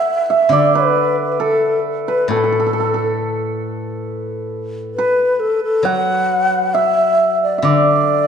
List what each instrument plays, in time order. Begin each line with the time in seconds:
Already playing: hammered dulcimer A4 B4 E5 F#5, xiao E5
0.30 hammered dulcimer E5
0.49 guzheng D3, hammered dulcimer D5, xiao D5
0.75 xiao B4, hammered dulcimer B4
1.32 xiao B4
1.40 hammered dulcimer A4, xiao A4
2.08 xiao B4, hammered dulcimer B4
2.28 guzheng A2, xiao A4, hammered dulcimer A4
2.36 hammered dulcimer A4
2.44 hammered dulcimer A4
2.52 hammered dulcimer A4
2.60 hammered dulcimer A4
2.67 hammered dulcimer A4
2.73 hammered dulcimer A4
2.80 hammered dulcimer A4
2.94 hammered dulcimer A4
4.94 xiao B4, hammered dulcimer B4
5.40 xiao A4
5.64 xiao A4
5.83 guzheng F#3, hammered dulcimer F#5, xiao F#5
6.74 xiao E5, hammered dulcimer E5
7.43 xiao D5
7.58 hammered dulcimer E5
7.62 guzheng D3, hammered dulcimer D5, xiao D5